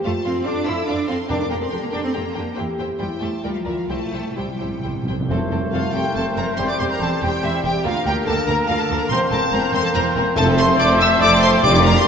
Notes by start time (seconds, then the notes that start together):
0.03 F2 A3 F4 A4 C5 F5 A5
0.24 F2 C4 F4 A4 C5 F5 C6
0.44 F2 D4 F4 A4 C5 F5 D6
0.65 F2 E4 F4 A4 C5 F5 E6
0.86 F2 D4 F4 A4 C5 F5 D6
1.07 F2 C4 F4 A4 C5 F5 C6
1.28 F2 D4 G4 A#4 G5 D6
1.40 D4 D6
1.49 F2 A#3 D4 G4 A#4 G5 A#5
1.61 C4 C6
1.70 F2 D4 G4 A4 A#4 G5
1.83 A#3 A#5
1.91 F2 D4 G4 A#4 G5 D6
2.02 C4 C6
2.13 F2 A#3 D4 G4 A#4 G5 A#5
2.34 F2 D4 G4 A#4 G5
2.55 E4 G4 C5 G5
2.59 E2
2.79 E2 E4 G4 C5 G5
2.99 E2 G3 E4 G4 C5 G5
3.19 E2 A3 E4 G4 C5 G5 A5
3.43 D2 G3 F4 A#4 D5 G5
3.54 F3 F5
3.65 D2 E3 F4 A#4 D5 E5
3.78 F3 F5
3.88 C2 C3 A3 E4 G4 C5 G5 A5
3.98 C3
4.06 C3
4.12 C2 C3 E4 G4 C5 G5
4.31 C3
4.36 C2 C3 G3 E4 G4 C5 G5
4.47 C3
4.54 C3
4.59 C2 E4 G4 C5 G5
4.63 C3
4.70 C3
4.80 C3 E4 G4 C5 G5
4.84 C2 C3
4.95 C3
5.03 C3 E4
5.07 C2 C3 G4 C5 G5
5.19 C3
5.29 F1 F2 A3 C4 A4 C5
5.51 F1 F2 C4 A4
5.72 F1 F2 C4 F4 A4 F5
5.93 F1 F2 C4 G4 A4 G5
6.14 F1 F2 C4 A4 A5
6.35 F1 F2 C4 A4 A#4 A#5
6.57 E1 E2 G3 C4 G4 C5 C6
6.67 D5 D6
6.79 E1 E2 C4 G4 C5 C6
6.90 A#4 A#5
7.00 E1 E2 C4 G4 A4 A5
7.22 E1 E2 C4 G4 G5
7.42 E1 E2 C4 E4 G4 E5
7.63 E1 E2 C4 G4 G5
7.84 D2 A#3 D4 F4 A#4 F5
8.05 D2 A#3 G4 A#4 G5
8.26 D2 A#3 A4 A#4 A5
8.47 D2 A#3 A#4 A#5
8.67 D2 A#3 F4 A#4 F5
8.78 A4 A5
8.90 D2 A#3 A#4
8.99 A#4 A#5
9.09 E1 E2 C4 A#4 C5 C6
9.31 E1 E2 C4 A4 A#4 A5
9.52 E1 E2 C4 A#4 A#5
9.73 E1 E2 C4 A#4 C5 C6
9.82 A4 A5
9.94 E1 E2 C4 A#4 A#5
10.16 E1 E2 C4 A#4
10.36 F1 F2 A3 A4 C5 A5
10.47 C4 C5
10.56 A3 A4 C5 C6
10.68 C4 C5
10.77 F1 F2 A3 A4 D5 D6
10.90 C4 C5
10.99 A3 A4 E5 E6
11.11 C4 C5
11.21 F1 F2 A3 A4 D5 D6
11.33 C4 C5
11.42 A3 A4 C5 C6
11.55 C4 C5
11.62 F1 F2 G3 D4 F4 G4 D5 D6
11.74 D4 F4 D5 D6
11.84 F4 G4 A#4 A#5
11.96 D4 F4 C5 C6